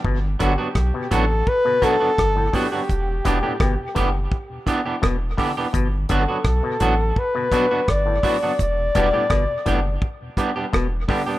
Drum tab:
HH |-x-x-x-o|px-x-x-o|px-x-x-o|px-x-x-o|
SD |--r---r-|--r---r-|--r---r-|--r---r-|
BD |oooooooo|oooooooo|oooooooo|oooooooo|